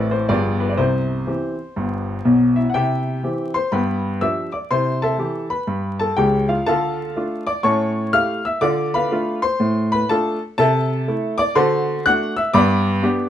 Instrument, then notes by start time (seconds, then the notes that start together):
grand piano
Already playing: A1 A2 E3 C4 A4 B4
0.11 C5
0.29 G1 G2 F3 B3 G#4 D5
0.60 B4
0.70 D5
0.77 C2 C3 C5
1.27 E3 C4 G4
1.76 G1 G2
2.25 B1 B2
2.56 E4 E5
2.70 F#5
2.74 C3 E4 G4 E5 G5
3.23 E3 C4 G4
3.54 C5 C6
3.72 G2 B3 B4 G5 B5
4.21 F3 D4 G4 E5 E6
4.52 D5 D6
4.71 C3 E4 C5 C6
5.02 A4 E5 A5
5.18 E3 E4 G4
5.50 B4 B5
5.67 G2
5.99 A4 A5
6.17 C#2 C#3 G4 G5
6.49 F4 F5
6.66 D3 F4 A4 F5 A5
7.16 A3 D4 F4
7.47 D5 D6
7.63 A2 C#4 C#5 A5 C#6
8.13 A3 E4 G4 F5 F6
8.45 E5 E6
8.61 D3 F4 D5 D6
8.94 B4 F5 B5
9.11 A3 D4 F4
9.42 C5 C6
9.60 A2
9.92 B4 B5
10.09 A3 D4 F4 A4 A5
10.58 C3 A4 E5 A5
11.08 A3 E4
11.38 D5 D6
11.55 D3 F#4 C5 A5 C6
12.06 A3 D4 F#4 F#5 F#6
12.37 E5 E6
12.53 G2 B3 D5 B5 D6
13.03 B3 D4 G4